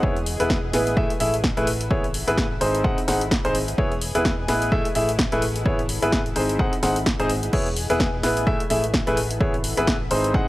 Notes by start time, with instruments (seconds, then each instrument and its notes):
Already playing: ambient pad G#4
0.03 fingered electric bass E1, grand piano B3 E4 G#4 C#5, kick
0.17 closed hi-hat
0.26 open hi-hat
0.40 fingered electric bass E1, grand piano B3 E4 G#4 B4, closed hi-hat
0.50 kick, snare
0.73 fingered electric bass A1, grand piano B3 E4 G#4 B4, snare, open hi-hat
0.87 closed hi-hat
0.97 grand piano A3 E4 G#4 E5, kick
1.10 closed hi-hat
1.20 fingered electric bass A1, grand piano A3 E4 G#4 E5, open hi-hat
1.34 closed hi-hat
1.44 kick, snare
1.57 fingered electric bass A1, grand piano A3 E4 G#4 B4, closed hi-hat
1.67 open hi-hat
1.81 closed hi-hat
1.90 fingered electric bass G#1, grand piano B3 E4 G#4 C#5, kick
2.04 closed hi-hat
2.14 open hi-hat
2.28 fingered electric bass G#1, grand piano B3 E4 G#4 B4, closed hi-hat
2.38 kick, snare
2.61 fingered electric bass G#1, grand piano C4 D#4 G#4 C5, ambient pad G#4, open hi-hat
2.75 closed hi-hat
2.84 grand piano C4 D#4 G#4 F#5, kick
2.98 closed hi-hat
3.08 fingered electric bass G#1, grand piano C4 D#4 G#4 F#5, snare, open hi-hat
3.21 closed hi-hat
3.31 kick, snare
3.45 fingered electric bass G#1, grand piano C4 D#4 G#4 C5, closed hi-hat
3.55 open hi-hat
3.68 closed hi-hat
3.78 fingered electric bass E1, grand piano B3 E4 G#4 C#5, kick
3.92 closed hi-hat
4.01 open hi-hat
4.15 fingered electric bass E1, grand piano B3 E4 G#4 B4, closed hi-hat
4.25 kick, snare
4.48 fingered electric bass A1, grand piano B3 E4 G#4 B4, snare, open hi-hat
4.62 closed hi-hat
4.72 grand piano A3 E4 G#4 E5, kick
4.85 closed hi-hat
4.95 fingered electric bass A1, grand piano A3 E4 G#4 E5, open hi-hat
5.09 closed hi-hat
5.19 kick, snare
5.32 fingered electric bass A1, grand piano A3 E4 G#4 B4, closed hi-hat
5.42 open hi-hat
5.56 closed hi-hat
5.66 fingered electric bass G#1, grand piano B3 E4 G#4 C#5, kick
5.79 closed hi-hat
5.89 open hi-hat
6.02 fingered electric bass G#1, grand piano B3 E4 G#4 B4, closed hi-hat
6.12 kick, snare
6.26 closed hi-hat
6.36 fingered electric bass G#1, grand piano C4 D#4 G#4 C5, ambient pad G#4, open hi-hat
6.49 closed hi-hat
6.59 grand piano C4 D#4 G#4 F#5, kick
6.73 closed hi-hat
6.83 fingered electric bass G#1, grand piano C4 D#4 G#4 F#5, snare, open hi-hat
6.96 closed hi-hat
7.06 kick, snare
7.20 fingered electric bass G#1, grand piano C4 D#4 G#4 C5, closed hi-hat
7.30 open hi-hat
7.43 closed hi-hat
7.53 fingered electric bass E1, grand piano B3 E4 G#4 C#5, kick, crash
7.67 closed hi-hat
7.76 open hi-hat
7.90 fingered electric bass E1, grand piano B3 E4 G#4 B4, closed hi-hat
8.00 kick, snare
8.23 fingered electric bass A1, grand piano B3 E4 G#4 B4, snare, open hi-hat
8.37 closed hi-hat
8.47 grand piano A3 E4 G#4 E5, kick
8.60 closed hi-hat
8.70 fingered electric bass A1, grand piano A3 E4 G#4 E5, open hi-hat
8.84 closed hi-hat
8.94 kick, snare
9.07 fingered electric bass A1, grand piano A3 E4 G#4 B4, closed hi-hat
9.17 open hi-hat
9.31 closed hi-hat
9.40 fingered electric bass G#1, grand piano B3 E4 G#4 C#5, kick
9.54 closed hi-hat
9.64 open hi-hat
9.77 fingered electric bass G#1, grand piano B3 E4 G#4 B4, closed hi-hat
9.87 kick, snare
10.11 fingered electric bass G#1, grand piano C4 D#4 G#4 C5, open hi-hat
10.24 closed hi-hat
10.34 grand piano C4 D#4 G#4 F#5, kick